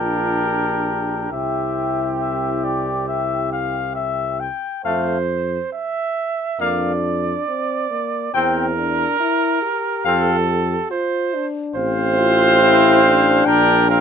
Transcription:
Already playing: A#1 D4 A#4 G5
0.00 F4
0.44 G4
1.31 C2 C4 E4 G4 E5
2.21 E5
2.64 D5
3.09 E5
3.53 F5
3.95 E5
4.40 G5
4.84 F2 A3 C5 F5
5.73 E5
6.59 F2 A#3 D4 D5 F5
7.48 C4
7.90 A#3
8.33 E2 C4 A#4 G5
8.77 D4
9.20 E4
9.62 G4
10.05 F2 C4 A4 F5
10.91 F4 C5
11.34 D4
11.75 A1 C4 C5 F5
12.18 F4
12.61 E4
13.03 D4
13.45 A#1 D4 A#4 G5
13.90 C4 A#4 F5

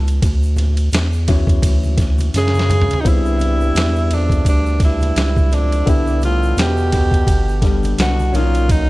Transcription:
Already playing: C#2
0.08 ride, shaker
0.22 D2, kick, ride, shaker
0.43 shaker
0.56 ride, high conga, low conga, shaker
0.77 ride, shaker
0.92 E2, snare, hi-hat pedal, ride, shaker
1.13 shaker
1.28 E3 F#3 C#4, kick, ride, low conga, shaker
1.47 kick, ride, shaker
1.62 D2, kick, ride, high conga, shaker
1.83 high conga, shaker
1.97 kick, snare, ride, shaker
2.18 ride, high conga, shaker
2.34 F#2 C#3 G#4, snare, hi-hat pedal, ride, shaker
2.48 snare
2.54 high conga, shaker
2.59 snare
2.69 mid tom, ride, low conga, shaker
2.82 floor tom
2.90 F#2, floor tom, ride, shaker
2.99 F#2 D#4
3.03 C2 G2 B3 C4 D4 E4, kick, ride, shaker
3.08 E4
3.25 shaker
3.39 ride, high conga, shaker
3.61 shaker
3.75 E2, snare, hi-hat pedal, ride, shaker
3.96 shaker
4.11 F2 D4, ride, low conga, shaker
4.30 kick, ride, shaker
4.45 D2 G2 D4, kick, ride, high conga, shaker
4.66 shaker
4.80 G2, kick, snare, ride, shaker
4.84 E4
5.01 ride, high conga, shaker
5.16 C#2, snare, hi-hat pedal, ride, shaker
5.36 kick, high conga, shaker
5.52 F2 D4, ride, low conga, shaker
5.72 ride, shaker
5.86 C2 G2 D3 B3 D4 E4 G4, kick, ride, shaker
6.07 shaker
6.21 A2 F4, ride, high conga, shaker
6.43 shaker
6.57 E2 B2 G4, snare, hi-hat pedal, ride, shaker
6.77 shaker
6.92 kick, ride, low conga, shaker
7.11 kick, ride, shaker
7.27 G1, kick, ride, high conga, shaker
7.49 shaker
7.62 D3 G3 B3 D4, kick, snare, ride, shaker
7.83 ride, high conga, shaker
7.98 C2 B2 F#4, snare, hi-hat pedal, ride, shaker
8.19 high conga, shaker
8.32 B1 A#2 A#3 C#4 D#4 F4, ride, low conga, shaker
8.54 ride, shaker
8.69 F#2 D#4, kick, ride, shaker

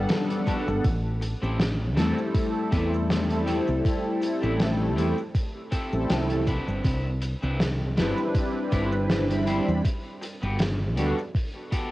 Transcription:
Already playing: G3 B3 D4 A4 F#5
0.09 snare, closed hi-hat, cabasa
0.30 closed hi-hat
0.46 B3 F#4 G4 A4, kick, closed hi-hat, cabasa
0.68 G1, cabasa
0.85 A1, kick, closed hi-hat, cabasa
1.22 muted clean electric guitar stroke, closed hi-hat, cabasa
1.42 A1 C4 E4 G4 A4, cabasa
1.60 snare, closed hi-hat, cabasa
1.96 E2 G3 A3 C4 E4 G4 A4, snare, closed hi-hat, cabasa
2.19 cabasa
2.35 kick, closed hi-hat, cabasa
2.71 E2 C4 E4 G4 B4, kick, closed hi-hat, cabasa
2.94 cabasa
3.10 snare, closed hi-hat, cabasa
3.29 G3 A3 C4 E4 A4, closed hi-hat
3.46 C4 E4 G4 A4, closed hi-hat, cabasa
3.67 C2, cabasa
3.85 kick, closed hi-hat, cabasa
4.21 muted clean electric guitar stroke, closed hi-hat, cabasa
4.42 A1 C4 E4 G4 B4, cabasa
4.60 snare, closed hi-hat, cabasa
4.96 E2 G3 A3 C4 E4 G4 A4 B4, closed hi-hat, cabasa
5.18 cabasa
5.35 kick, closed hi-hat, cabasa
5.71 C4 E4 G4 A4, kick, closed hi-hat, cabasa
5.92 A1 G3 A3 C4 E4 A4, cabasa
6.10 C2, snare, closed hi-hat, cabasa
6.30 closed hi-hat
6.47 C4 D4 E4 B4, kick, closed hi-hat, cabasa
6.68 G1, cabasa
6.84 C2, kick, closed hi-hat, cabasa
7.22 muted clean electric guitar stroke, closed hi-hat, cabasa
7.42 C2 C4 D4 E4 B4, cabasa
7.60 snare, closed hi-hat, cabasa
7.96 G1 G3 C4 D4 E4 B4, snare, closed hi-hat, cabasa
8.17 cabasa
8.35 kick, closed hi-hat, cabasa
8.72 G1 C4 D4 E4 B4, kick, closed hi-hat, cabasa
8.92 cabasa
9.10 snare, closed hi-hat, cabasa
9.30 G3 C4 D4 E4 B5, closed hi-hat
9.47 C4 D4 E4 C5, closed hi-hat, cabasa
9.68 E2, cabasa
9.85 kick, closed hi-hat, cabasa
10.22 muted clean electric guitar stroke, closed hi-hat, cabasa
10.42 G1 B3 F#4 G4 B4, cabasa
10.59 snare, closed hi-hat, cabasa
10.97 D2 G3 B3 D4 F#4 G4 A4, closed hi-hat, cabasa
11.18 cabasa
11.35 kick, closed hi-hat, cabasa
11.72 B3 F#4 G4 A4, kick, closed hi-hat, cabasa

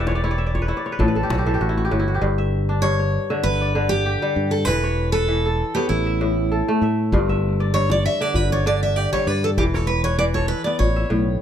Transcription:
Already playing: E1 E3 B3 G4 B4 E5 F#5 G5
0.00 D5
0.07 C#5, djembe slap
0.15 D5
0.24 E4 C#5
0.31 D5
0.38 E5
0.46 D5
0.55 C#5, djembe tone
0.62 B4
0.68 E4 C#5
0.77 D5
0.86 C#5, djembe slap
0.92 B4
0.99 A1 A2 A4, djembe bass
1.08 B4
1.15 A4, djembe tone
1.23 G4
1.30 B1 F#4, djembe slap
1.38 G4
1.46 E3 A4
1.54 G4
1.61 A1 F#4
1.69 E4
1.77 F#4, djembe tone
1.85 G4
1.91 G1 A2 F#4
1.99 E4
2.08 F#4, djembe slap
2.14 G4
2.22 G1 G2
2.38 E5
2.69 D4
2.82 G2 C#5
2.99 C#5
3.30 D3 E5
3.43 G1 B4
3.61 D5
3.75 D3
3.89 G4
4.06 G4
4.22 G3
4.36 G2
4.51 A4
4.65 E1 E3 B4
4.84 C#5
5.12 A4 B4
5.28 E3
5.46 A4
5.75 B3 G4 C#5
5.89 A1 E4
6.06 E5
6.21 A2
6.52 A4
6.68 A3
6.82 A2 E5
7.12 G1 G2, djembe bass
7.29 E5, djembe tone
7.60 D5, djembe slap
7.74 G2 C#5
7.90 C#5 D5, djembe slap, djembe tone
8.04 E5, djembe slap
8.21 D3 D5 E5
8.34 G1 B4, djembe bass
8.50 C#5 D5, djembe tone
8.66 D3 D5
8.83 E5
8.96 G4 D5
9.13 G3 C#5, djembe slap, djembe tone
9.27 G2 B4 D5
9.43 A4, djembe slap
9.57 E1 E3 G4, djembe bass
9.74 A4 C#5, djembe slap, djembe tone
9.87 B4, djembe slap
10.04 B4 C#5, djembe slap
10.19 E3 D5
10.34 A4 C#5, djembe slap, djembe tone
10.48 B4
10.64 B3 D5
10.79 A1 C#5, djembe bass
10.96 E5, djembe tone
11.10 B1 A2

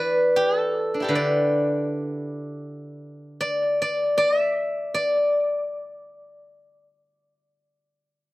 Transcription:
Already playing: E3 B4 D5 E5 G5
0.36 G4
0.57 A4
0.94 D4
1.00 E4 G4 A4
1.08 D3 B4
1.15 D5
3.41 D5
3.82 D5
4.18 D5
4.39 E5
4.94 D5

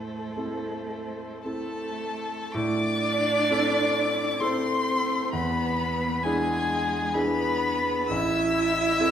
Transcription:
Already playing: A2 A3 A4 C5
0.37 C4 E4 A4
1.45 A3 C4 E4 A4 A5
2.54 A2 D4 D5 D6
3.50 C4 E4 A4
4.40 C4 E4 A4 C5 C6
5.32 E2 B3 B4 B5
6.23 G#3 D4 E4 G#4 G#5
7.14 B3 D4 E4 G#4 B4 B5
8.09 A1 E4 E5 E6
9.00 C4 E4 A4

